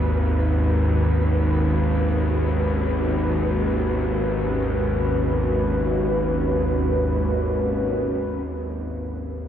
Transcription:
0.00 8.49 G#1 medium
0.00 8.50 D#2 medium
0.00 9.48 G#3 medium
0.00 9.48 C#4 medium
0.00 9.48 F#4 medium
0.00 8.48 B4 medium
0.00 9.48 B4 medium
8.50 9.48 G#1 medium
8.50 9.48 D#2 medium

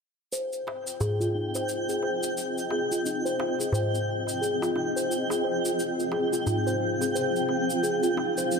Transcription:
0.32 8.60 C4 medium
0.32 8.60 F4 medium
0.32 8.60 G#4 medium
0.32 0.44 C5 medium
0.32 5.74 D#5 medium
0.32 8.60 G5 medium
0.32 cabasa soft
0.53 cabasa soft
0.67 darbuka ka soft
0.67 darbuka tek medium
0.87 cabasa medium
1.01 1.20 G#4 medium
1.01 darbuka dum medium
1.01 cabasa soft
1.20 1.33 F4 medium
1.20 cabasa soft
1.35 1.54 D#4 medium
1.55 1.69 C5 medium
1.55 darbuka ka soft
1.55 cabasa medium
1.69 cabasa soft
1.89 2.02 G#4 medium
1.89 cabasa soft
2.03 2.15 C5 medium
2.03 darbuka ka medium
2.23 cabasa medium
2.38 cabasa soft
2.58 cabasa soft
2.71 2.91 G#4 medium
2.71 darbuka tek medium
2.91 3.04 F4 medium
2.91 cabasa medium
3.06 3.25 D#4 medium
3.06 cabasa medium
3.25 3.39 C5 medium
3.25 cabasa soft
3.39 darbuka ka soft
3.39 darbuka tek medium
3.59 3.73 G#4 medium
3.59 darbuka ka soft
3.59 cabasa medium
3.72 3.85 C5 medium
3.72 darbuka dum medium
3.72 cabasa soft
3.95 cabasa soft
4.27 darbuka ka soft
4.27 cabasa medium
4.42 4.61 G#4 medium
4.42 cabasa soft
4.62 4.75 F4 medium
4.62 darbuka tek medium
4.62 cabasa soft
4.76 4.95 D#4 medium
4.76 darbuka ka medium
4.96 5.10 C5 medium
4.96 cabasa medium
5.11 cabasa medium
5.30 5.44 G#4 medium
5.30 darbuka tek medium
5.30 cabasa soft
5.44 5.56 C5 medium
5.65 cabasa medium
5.79 8.60 F5 medium
5.79 cabasa medium
6.00 cabasa soft
6.12 6.32 G#4 medium
6.12 darbuka ka soft
6.12 darbuka tek medium
6.33 6.45 F4 medium
6.33 cabasa medium
6.47 6.66 D#4 medium
6.47 darbuka dum medium
6.47 cabasa medium
6.67 6.80 C5 medium
6.67 cabasa soft
7.01 7.14 G#4 medium
7.01 darbuka ka soft
7.01 cabasa medium
7.15 7.27 C5 medium
7.15 cabasa medium
7.36 cabasa soft
7.49 darbuka ka medium
7.70 cabasa medium
7.83 8.02 G#4 medium
7.83 cabasa medium
8.03 8.16 F4 medium
8.03 cabasa soft
8.17 8.36 D#4 medium
8.17 darbuka tek medium
8.38 8.51 C5 medium
8.38 cabasa medium
8.52 cabasa soft

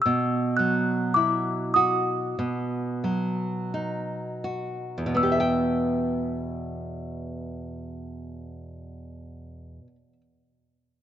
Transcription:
0.02 0.59 E6 medium
0.06 2.34 B2 medium
0.57 2.34 F#3 soft
0.57 1.16 F#6 medium
1.14 2.34 E4 soft
1.14 1.76 D6 medium
1.74 2.36 F#4 soft
1.74 4.39 D#6 medium
2.39 5.05 B2 soft
3.04 5.14 F#3 soft
3.74 5.15 D#4 soft
4.44 5.16 F#4 soft
4.98 9.79 E2 soft
5.06 9.87 B2 soft
5.14 9.95 B3 soft
5.14 9.98 E6 medium
5.23 5.40 G4 soft
5.32 10.13 E5 soft
5.40 10.21 G5 medium

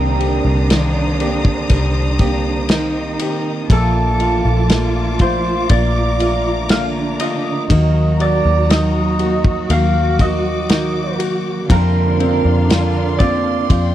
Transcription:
0.00 0.41 C2 medium
0.00 0.70 C3 medium
0.00 3.65 C3 medium
0.00 2.66 D3 medium
0.00 0.69 D#3 medium
0.00 0.71 A#3 medium
0.00 0.71 C4 medium
0.00 2.66 D4 loud
0.00 0.71 G4 medium
0.00 1.15 A#4 medium
0.00 3.67 C5 medium
0.00 3.67 A#5 medium
0.00 3.67 D#6 medium
0.19 1.19 G4 medium
0.19 ride medium
0.45 1.66 C2 medium
0.70 1.20 D#3 medium
0.70 2.66 D#3 medium
0.70 1.20 A#3 medium
0.70 1.20 C4 medium
0.70 1.19 G4 medium
0.70 snare loud
0.70 ride medium
1.20 2.22 A#3 medium
1.20 2.20 C4 soft
1.20 2.19 G4 medium
1.20 ride soft
1.45 kick medium
1.69 3.16 C2 loud
1.69 3.66 G3 medium
1.69 kick medium
1.69 ride medium
2.19 2.70 A#3 medium
2.19 2.70 C4 medium
2.19 2.70 G4 medium
2.19 3.20 G4 medium
2.19 kick loud
2.19 ride medium
2.69 3.68 D#3 medium
2.69 3.70 D#3 medium
2.69 3.70 A#3 medium
2.69 3.70 C4 medium
2.69 3.68 D#4 medium
2.69 3.67 D#4 medium
2.69 3.71 G4 medium
2.69 snare loud
2.69 ride medium
3.19 3.69 G4 medium
3.19 ride medium
3.69 4.41 A#1 loud
3.69 4.70 A#2 medium
3.69 6.65 F3 medium
3.69 4.68 F3 medium
3.69 4.69 A3 medium
3.69 4.69 A#3 medium
3.69 4.70 D4 medium
3.69 6.65 F4 medium
3.69 4.70 F4 medium
3.69 5.21 A4 medium
3.69 5.68 A5 medium
3.69 7.66 D6 medium
3.69 kick loud
3.69 ride medium
4.20 5.19 F4 medium
4.20 ride medium
4.45 5.66 A#1 medium
4.70 5.20 F3 medium
4.70 5.20 A3 medium
4.70 5.69 A#3 medium
4.70 5.20 D4 medium
4.70 5.19 F4 medium
4.70 snare loud
4.70 ride medium
5.19 6.21 A3 soft
5.19 6.20 D4 soft
5.19 6.18 F4 medium
5.19 6.20 F4 medium
5.19 5.70 C5 medium
5.19 kick medium
5.19 ride soft
5.69 7.16 A#1 medium
5.69 6.70 A#3 medium
5.69 6.70 D5 medium
5.69 7.67 A#5 medium
5.69 kick medium
5.69 ride medium
6.19 6.69 A3 soft
6.19 6.70 D4 soft
6.19 6.69 F4 medium
6.19 7.19 F4 medium
6.19 ride medium
6.69 7.68 D3 medium
6.69 7.70 F3 medium
6.69 7.70 A3 medium
6.69 7.67 A#3 medium
6.69 7.68 D4 medium
6.69 7.71 F4 medium
6.69 6.84 F5 loud
6.69 snare loud
6.69 ride medium
7.20 7.69 F4 medium
7.20 8.21 D#5 loud
7.20 ride medium
7.70 8.41 D#2 medium
7.70 11.66 D#3 medium
7.70 8.69 D#3 medium
7.70 11.66 F#3 medium
7.70 8.70 A#3 medium
7.70 8.70 D#4 medium
7.70 11.66 F#4 medium
7.70 8.70 F#4 medium
7.70 9.68 A#5 medium
7.70 kick loud
7.70 ride medium
8.20 9.18 F#4 medium
8.20 8.70 D5 loud
8.20 ride medium
8.45 9.66 D#2 loud
8.69 9.20 D#3 medium
8.69 9.20 A#3 medium
8.69 10.65 D#4 medium
8.69 9.19 D#4 medium
8.69 9.18 F#4 medium
8.69 9.71 D#5 medium
8.69 snare loud
8.69 ride medium
9.19 10.21 A#3 soft
9.19 10.20 D#4 soft
9.19 10.18 F#4 medium
9.19 ride soft
9.44 kick loud
9.69 11.16 D#2 loud
9.69 11.66 A#3 soft
9.69 10.21 F5 medium
9.69 11.67 D6 medium
9.69 ride medium
10.19 10.69 A#3 soft
10.19 10.69 D#4 soft
10.19 11.17 F#4 medium
10.19 10.70 F#4 medium
10.19 11.17 D#5 medium
10.19 kick loud
10.19 ride medium
10.69 11.69 D#3 medium
10.69 11.70 A#3 medium
10.69 11.66 D#4 medium
10.69 11.70 D#4 medium
10.69 11.70 F#4 medium
10.69 snare loud
10.69 ride medium
11.19 11.68 F#4 medium
11.19 ride medium
11.69 12.70 F2 medium
11.69 12.41 F2 loud
11.69 12.70 C3 medium
11.69 13.95 D3 medium
11.69 13.95 F3 medium
11.69 12.68 F3 medium
11.69 12.70 A#3 medium
11.69 12.70 C4 medium
11.69 13.95 D4 loud
11.69 12.70 F4 medium
11.69 13.17 A#4 medium
11.69 13.68 F5 medium
11.69 13.95 C6 medium
11.69 kick loud
11.69 ride medium
12.20 13.19 C4 medium
12.20 ride medium
12.45 13.66 F2 medium
12.70 13.20 F3 medium
12.70 13.20 A#3 medium
12.70 13.19 C4 medium
12.70 13.69 F4 medium
12.70 13.18 F4 medium
12.70 snare loud
12.70 ride medium
13.19 13.95 F3 soft
13.19 13.95 A#3 soft
13.19 13.95 C4 medium
13.19 13.95 F4 medium
13.19 13.95 D5 loud
13.19 kick medium
13.19 ride soft
13.70 13.95 F2 loud
13.70 13.95 F4 medium
13.70 13.95 G5 medium
13.70 kick medium
13.70 ride medium

